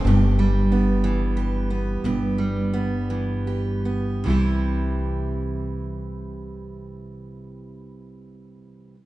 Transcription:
<<
  \new Staff \with { instrumentName = "Steel-string acoustic guitar" } { \time 6/8 \key c \major \tempo 4. = 50 <g, g'>8 g8 b8 e8 g'8 b8 | <g, g'>8 g8 b8 e8 g'8 b8 | <c e g e' g'>2.~ | <c e g e' g'>2. | }
  \new Staff \with { instrumentName = "Upright bass" } { \clef bass \time 6/8 \key c \major g,,2. | g,,2. | c,2.~ | c,2. | }
>>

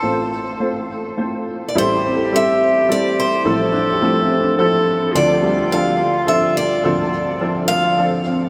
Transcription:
<<
  \new Staff \with { instrumentName = "Steel-string acoustic guitar" } { \time 3/4 \key a \minor \tempo 4 = 106 a'2~ a'8 r16. d''32 | c''4 e''4 d''8 c''8~ | c''2~ c''8 r8 | d''4 f''4 e''8 d''8~ |
d''4. f''4. | }
  \new Staff \with { instrumentName = "Clarinet" } { \time 3/4 \key a \minor r2. | g'2. | a'2 a'4 | f'2.~ |
f'2~ f'8 r8 | }
  \new Staff \with { instrumentName = "Felt piano" } { \time 3/4 \key a \minor r2. | e'16 g'16 <c' a'>2~ <c' a'>8~ | <c' a'>8 d'16 g'16 a16 c'16 d'4.~ | d'8 g2~ g8~ |
g4 r8 f4 c'8 | }
  \new Staff \with { instrumentName = "Upright piano" } { \time 3/4 \key a \minor <a c' f' c''>8. r16 <a c' f' c''>8. r16 <a c' f' c''>8. r16 | <g c' e' a'>8. r16 <g c' e' a'>8. r16 <g c' e' a'>8. r16 | <f c' e' a'>8. r16 <f c' e' a'>8. r16 <f c' e' a'>8. r16 | <f c' d' a'>8. r16 <f c' d' a'>8. r16 <f c' d' a'>8. r16 |
<f c' d' a'>8. r16 <f c' d' a'>8. r16 <f c' d' a'>8. r16 | }
  \new Staff \with { instrumentName = "Upright piano" } { \clef bass \time 3/4 \key a \minor <a,, a,>2. | <a,, a,>2. | <a,, a,>2. | <d, d>2. |
<d, d>2. | }
>>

